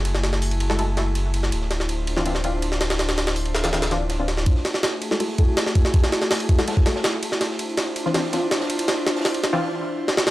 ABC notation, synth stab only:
X:1
M:4/4
L:1/16
Q:1/4=163
K:Dlyd
V:1 name="Synth stab"
z6 z [G,EFA] [G,EFA] z [G,EFA] z4 z | z6 z [E,=CD=F] [E,CDF] z [E,CDF] z4 z | z6 z [E,=CD=F] [E,CDF] z [E,CDF] z2 [E,CDF] z2 | z6 z [G,EFA] [G,EFA] z [G,EFA] z4 z |
z6 z [G,EFA] [G,EFA] z [G,EFA] z4 z | z6 z [E,=CD=F] [E,CDF] z [E,CDF] z4 z | z6 z [E,=CD=F] z8 |]